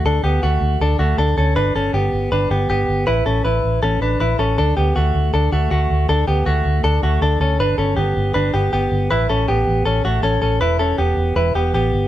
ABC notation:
X:1
M:4/4
L:1/8
Q:1/4=159
K:D
V:1 name="Clean electric guitar"
[DA] [B,G] [A,F]2 [DA] [A,F] [DA] [CA] | [DB] [CA] [B,G]2 [DB] [B,G] [B,G]2 | [EB] [CA] [EB]2 [CA] [DB] [EB] [CA] | [DA] [B,G] [A,F]2 [DA] [A,F] [A,F]2 |
[DA] [B,G] [A,F]2 [DA] [A,F] [DA] [CA] | [DB] [CA] [B,G]2 [DB] [B,G] [B,G]2 | [EB] [CA] [B,G]2 [CA] [A,F] [CA] [CA] | [EB] [CA] [B,G]2 [EB] [B,G] [B,G]2 |]
V:2 name="Fingered electric bass" clef=bass
D,, D,, D,, D,, D,, D,, D,, D,, | G,,, G,,, G,,, G,,, G,,, G,,, G,,, G,,, | A,,, A,,, A,,, A,,, A,,, A,,, A,,, A,,, | D,, D,, D,, D,, D,, D,, D,, D,, |
D,, D,, D,, D,, D,, D,, D,, D,, | G,,, G,,, G,,, G,,, G,,, G,,, G,,, G,,, | A,,, A,,, A,,, A,,, A,,, A,,, A,,, A,,, | E,,,2 E,,, E,,, E,,, E,,, A,,, G,,, |]